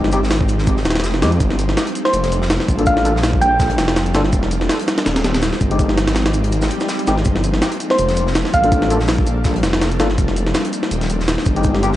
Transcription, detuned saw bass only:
Already playing: G1
0.22 G#1
0.85 D#1
1.04 F1
1.22 F2
1.40 G1
2.14 F1
2.69 A1
3.15 A#1
3.78 F1
4.15 G1
4.33 F1
5.06 D#1
5.61 G1
6.08 G#1
7.08 G#1
7.26 G1
7.99 F1
8.54 A1
9.00 A#1
9.63 F1
10.00 G1
10.18 F1
10.91 D#1
11.46 G1
11.93 G#1

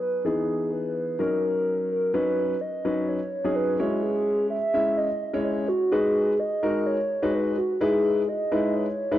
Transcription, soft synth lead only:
0.02 B4
0.25 G#4
0.72 B4
1.20 A#4
1.90 A#4
2.14 B4
2.61 D#5
3.08 C#5
3.56 B4
3.79 F#4
4.03 G#4
4.50 E5
4.97 D#5
5.44 C#5
5.68 F#4
5.92 G#4
6.39 D#5
6.86 C#5
7.34 B4
7.58 F#4
7.81 G#4
8.29 D#5
8.69 D#5
8.76 C#5

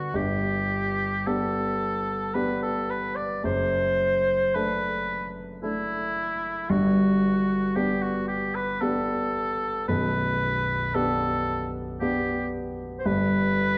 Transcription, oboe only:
Already playing: F#4
0.15 G4
1.27 A4
2.34 B4
2.62 A4
2.91 B4
3.16 D5
3.45 C5
4.54 B4
5.63 E4
6.69 F#4
7.75 G4
8.02 F#4
8.28 G4
8.55 B4
8.81 A4
9.88 B4
10.94 A4
12.00 G4
12.99 C5
13.05 B4

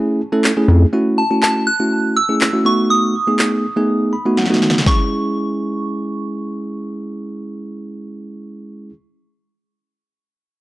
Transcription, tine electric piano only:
Already playing: A3 C#4 E4 G#4
0.32 A3 C#4 E4 A4
0.57 A3 C#4 E4 G#4
0.93 A3 C#4 E4 F#4
1.30 A3 C#4 E4 F#4
1.80 A3 C#4 E4 F#4
2.29 A3 C#4 E4 G#4
2.53 A3 C#4 E4 F#4
2.65 A3 B3 D#4 F#4
3.27 A3 B3 D#4 G#4
3.76 A3 B3 D#4 G#4
4.13 B5
4.26 A3 B3 D#4 F#4
4.37 F#5
4.50 A3 B3 D#4 F#4
4.84 G#3 C#4 E4
4.89 G#4

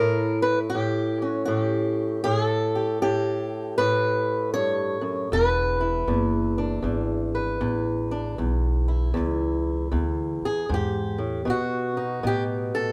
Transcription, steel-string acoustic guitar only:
Already playing: E4 A#4
0.00 A2
0.42 B4
0.70 G4
0.75 A2
1.22 C#4 F#4
1.45 A2 F#4
1.56 G4
2.24 A2 G#4
2.44 A4
2.75 G4
3.02 A2 G4
3.78 A2 B4
4.54 G2 C#5
5.01 F#2
5.32 E2 B4
5.80 E4
6.08 E2
6.58 D4
6.67 A4
6.83 E2
7.35 B4
7.61 E2
8.11 D4
8.38 E2
8.88 E4
9.14 E2
9.92 E2
10.45 G#4
10.69 G#2
10.74 G4
11.18 A2
11.45 B2
11.50 F#4
11.97 D#4
12.23 B2 G4
12.75 A4

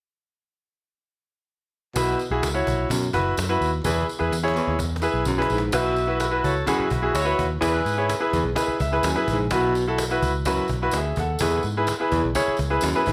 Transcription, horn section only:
5.74 F#4 B4 E5
6.21 E4 F#4 B4
6.44 F#4 A4 C#5
6.67 E4 F#4 B4
6.91 E4 F#4 B4
7.13 E4 F#4 C#5
7.61 E4 G#4 B4

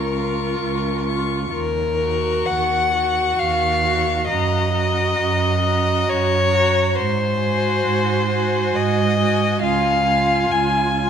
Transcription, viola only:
Already playing: F4
0.15 F4
1.08 F4
2.00 F#4
2.94 F#4
3.84 F#4
4.29 F#4
4.73 F#4
5.63 F#4
6.52 F#4
7.40 F#4
8.29 F#4
9.18 F#4
9.62 F4
10.06 F4
10.94 F4

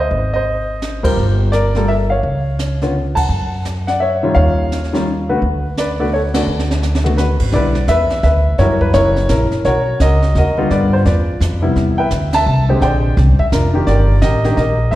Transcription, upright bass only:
0.11 G#1
1.17 G1
2.23 C#2
3.29 F#2
4.36 D#2
5.42 D2
6.47 D2
7.40 G#1
7.53 B1
7.88 E2
8.23 D2
8.58 F#2
8.94 F#1
9.29 A#1
9.51 muted upright bass stroke
9.65 B1
10.00 C#2
10.35 D#2
10.70 G2
11.05 E2
11.40 F2
11.76 E2
12.11 D2
12.46 C2
12.81 A#1
13.17 C2
13.39 muted upright bass stroke
13.52 F1
13.87 G1
14.22 A1
14.57 A#1
14.92 D2

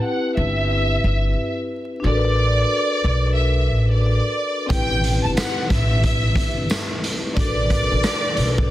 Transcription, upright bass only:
0.37 G1
1.04 G1
2.04 A1
3.04 B1
3.71 A1
4.70 A1
5.25 G1
5.71 A1
6.36 G1
7.37 A1
7.92 A1
8.37 B1

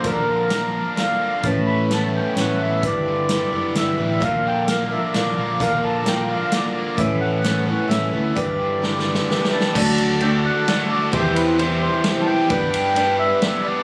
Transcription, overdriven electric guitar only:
Already playing: D3 A#3 D4
0.03 A#2
0.26 D3
0.50 A#3
0.72 D4
0.96 D3
1.19 A#3
1.44 A2
1.67 E3
1.90 B3
2.14 C#4
2.37 E3
2.59 B3
2.83 G2
3.06 D3
3.29 G3
3.52 B3
3.76 E3
3.98 G3
4.21 A#2
4.46 D3
4.68 A#3
4.91 D4
5.15 D3
5.38 A#3
5.61 A#2
5.83 D3
6.06 A#3
6.29 D4
6.52 D3
6.75 A#3
6.98 A2
7.21 E3
7.45 B3
7.67 C#4
7.91 E3
8.14 B3
8.36 G2
8.60 D3
8.83 G3
9.05 B3
9.30 E3
9.53 G3
9.73 D3 D4 F#4 A4
10.19 D3 D4 F#4 A4
10.89 D4 F#4 A4
11.12 E2 E3 G3 C4 G4 C5
11.58 E2 E3 G3 C4 G4 C5
12.27 G3 C4 G4 C5
12.48 G3 B3 D4 B4
12.94 G3 B3 D4 B4
13.63 B3 D4 B4

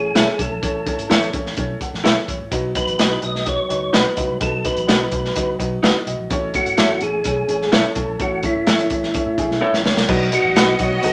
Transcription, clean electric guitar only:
0.15 E4 A4 C#5 E5
1.10 E4 A4 C#5 E5
2.04 E4 A4 C#5 E5
2.99 D#4 F#4 B4 D#5
3.93 D#4 F#4 B4 D#5
4.88 D#4 F#4 B4 D#5
5.83 D#4 F#4 B4 D#5
6.78 E4 A4 C#5 E5
7.72 E4 A4 C#5 E5
8.67 E4 A4 C#5 E5
9.61 E4 A4 C#5 E5
10.56 D#4 F#4 B4 D#5

